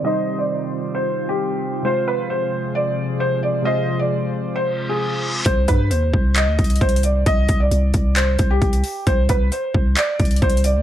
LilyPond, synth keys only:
\new Staff \with { instrumentName = "Synth keys" } { \time 4/4 \key c \minor \tempo 4 = 133 <c g ees' c''>1 | <c aes f' c''>1 | <c aes f' c''>1 | r1 |
r1 | r1 | }